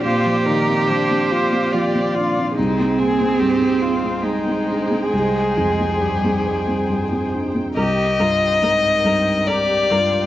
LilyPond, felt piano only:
\new Staff \with { instrumentName = "Felt piano" } { \time 3/4 \key c \minor \tempo 4 = 71 <bes, c'>16 f16 ees16 c'16 f16 c'16 f'16 c'16 f16 c'16 d'16 c'16 | c,16 c'16 bes16 c'16 g,16 c'16 aes'16 c'8 c'16 d'16 c'16 | c,8 f,16 c'16 g,16 c'16 c''16 c'16 g,16 c'16 d'16 c'16 | c,8 g,8 aes,8 g,8 g'8 g,8 | }